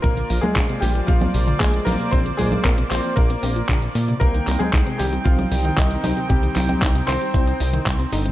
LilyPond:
<<
  \new Staff \with { instrumentName = "String section" } { \time 4/4 \key bes \mixolydian \tempo 4 = 115 <bes f' c'' d''>1~ | <bes f' c'' d''>1 | <c' ees' g''>1~ | <c' ees' g''>1 | }
  \new Staff \with { instrumentName = "Grand piano" } { \time 4/4 \key bes \mixolydian <bes bes'>8. <aes aes'>8. <g g'>8 <f f'>4 <aes aes'>8 <bes bes'>8 | <c' c''>8 <aes aes'>8 <bes bes'>8 <c' c''>8 <bes bes'>4. r8 | <bes bes'>8. <aes aes'>8. <g g'>8 <f f'>4 <ees ees'>4 | <g g'>4 r8 <c' c''>2 r8 | }
  \new Staff \with { instrumentName = "Synth arpeggio sound" } { \clef bass \time 4/4 \key bes \mixolydian c16 d16 f16 bes16 c'16 c16 d16 f16 bes16 c'16 c16 d16 f16 bes16 c'16 c16 | c16 d16 f16 bes16 c'16 c16 d16 f16 bes16 c'16 c'16 f16 d16 f16 bes16 c16 | c16 ees16 g16 c'16 ees'16 c16 ees16 g16 c'16 ees'16 c16 ees16 g16 c'16 ees'16 c16 | c16 ees16 g16 c'16 ees'16 c16 ees16 g16 c'16 ees'16 c16 ees16 g16 c'16 ees'16 c16 | }
  \new Staff \with { instrumentName = "Analog synth bass" } { \clef bass \time 4/4 \key bes \mixolydian bes,,8 bes,,8 bes,,8 bes,,8 bes,,8 bes,,8 bes,,8 bes,,8 | bes,,8 bes,,8 bes,,8 bes,,8 bes,,8 bes,,8 bes,,8 bes,8 | c,8 c,8 c,8 c,8 c,8 c,8 c,8 c,8 | c,8 c,8 c,8 c,8 c,8 c,8 c,8 g,,8 | }
  \new DrumStaff \with { instrumentName = "Drums" } \drummode { \time 4/4 <hh bd>16 hh16 hho16 <cgho hh>16 <hc hh bd>16 hh16 hho16 hh16 <hh bd>16 <cgho hh>16 hho16 hh16 <hc hh bd>16 hh16 <cgho hho>16 hh16 | <hh bd>16 hh16 <cgho hho>16 <cgho hh>16 <hc hh bd>16 hh16 <hc hho>16 hh16 <hh bd>16 hh16 hho16 hh16 <hc hh bd>16 hh16 hho16 hh16 | <hh bd>16 hh16 <hc hho>16 <cgho hh>16 <hc hh bd>16 hh16 hho16 hh16 <hh bd>16 <cgho hh>16 hho16 hh16 <hc hh bd>16 hh16 <cgho hho>16 hh16 | <hh bd>16 hh16 <hc cgho hho>16 <cgho hh>16 <hc hh bd>16 hh16 <hc hho>16 hh16 <hh bd>16 hh16 hho16 hh16 <hc hh bd>16 hh16 hho16 hh16 | }
>>